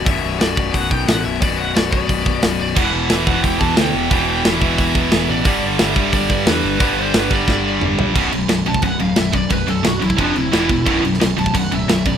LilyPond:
<<
  \new Staff \with { instrumentName = "Lead electric guitar" } { \time 4/4 \key b \minor \tempo 4 = 178 e''4 d''4 fis''8 g''8 fis''8 e''8 | d''8 fis''8 d''8 d''2 d''8 | fis''4 e''8 fis''8 g''8 a''8 g''4 | g''8 g''8 e''4 e''4. d''8~ |
d''8 r8 e''4 d''4 b'4 | b'8 c''8 b'8 d''8 d''4 r4 | r4. a''8 fis''8 eis''8 e''8 d''8 | b'8 a'8 fis'8 e'8 d'8 e'4.~ |
e'8 r4 a''8 fis''8 e''8 e''8 d''8 | }
  \new Staff \with { instrumentName = "Distorted electric guitar" } { \clef bass \time 4/4 \key b \minor <b,, fis, b,>1 | <b,, fis, b,>1 | <e, b, e>1 | <e, b, e>1 |
<g, d g>1 | <g, d g>1 | <b,, fis, b,>8 <b,, fis,>8 <b,, fis,>8 <b,, fis,>8 <b,, fis,>8 <b,, fis,>8 <b,, fis,>8 <b,, fis,>8 | <b,, fis,>8 <b,, fis,>8 <b,, fis,>8 <b,, fis,>8 <f, c f>8 <f, c>8 <e, b, e>8 <e, b,>8 |
<b,, fis, b,>8 <b,, fis,>8 <b,, fis,>8 <b,, fis,>8 <b,, fis,>8 <b,, fis,>8 <b,, fis,>8 <b,, fis,>8 | }
  \new Staff \with { instrumentName = "Distorted electric guitar" } { \clef bass \time 4/4 \key b \minor r1 | r1 | <e, b, e>4. <e, b, e>2~ <e, b, e>8 | <e, b, e>4. <e, b, e>2~ <e, b, e>8 |
<g, d g>4. <g, d g>2~ <g, d g>8 | <g, d g>4. <g, d g>2~ <g, d g>8 | <b,, fis, b,>8 <b,, fis,>8 <b,, fis,>8 <b,, fis,>8 <b,, fis,>8 <b,, fis,>8 <b,, fis,>8 <b,, fis,>8 | <b,, fis,>8 <b,, fis,>8 <b,, fis,>8 <b,, fis,>8 <f, c f>8 <f, c>8 <e, b, e>8 <e, b,>8 |
<b,, fis, b,>8 <b,, fis,>8 <b,, fis,>8 <b,, fis,>8 <b,, fis,>8 <b,, fis,>8 <b,, fis,>8 <b,, fis,>8 | }
  \new Staff \with { instrumentName = "Picked electric bass" } { \clef bass \time 4/4 \key b \minor b,,,8 b,,,8 b,,,8 b,,,8 b,,,8 b,,8 a,,8 b,,,8 | b,,,4 b,,,4 b,,,4 b,,,8 b,,,8 | e,,8 e,,8 e,,8 e,,8 e,,8 e,8 d,8 e,,8 | e,,4 e,,4 e,,4 e,,8 a,,8 |
g,,8 g,,8 g,,8 g,,8 g,,8 g,8 e,8 g,,8 | g,,4 g,,4 g,,4 g,,8 ais,,8 | b,,,8 b,,,8 b,,,8 b,,,8 b,,,8 d,,8 b,,,4 | b,,,8 b,,,8 b,,,8 e,,8 f,,8 d,,8 e,,4 |
b,,,8 b,,,8 b,,,8 b,,,8 b,,,8 d,,8 b,,,4 | }
  \new DrumStaff \with { instrumentName = "Drums" } \drummode { \time 4/4 <hho bd>4 <hho sn>8 bd8 <hho bd>8 bd8 <hho sn>4 | <hho bd>4 <hho sn>8 bd8 <hho bd>8 bd8 <hho sn>4 | <cymc bd>4 <hho sn>8 bd8 <hho bd>8 bd8 <hho sn>4 | <hho bd>4 <hho sn>8 bd8 <hho bd>8 bd8 <hho sn>4 |
<hho bd>4 <hho sn>8 bd8 <hho bd>8 bd8 <hho sn>4 | <hho bd>4 <hho sn>8 bd8 <bd sn>4 toml8 tomfh8 | <cymc bd>8 cymc8 <cymc sn>8 cymc16 bd16 <cymc bd>8 cymc8 <cymc sn>8 <cymc bd>8 | <cymc bd>8 cymc8 <cymc sn>8 cymc16 bd16 <cymc bd>8 cymc8 <cymc sn>8 <cymc bd>8 |
<cymc bd>8 cymc16 sn16 <cymc sn>8 cymc16 bd16 <cymc bd>8 cymc8 <cymc sn>8 <cymc bd>8 | }
>>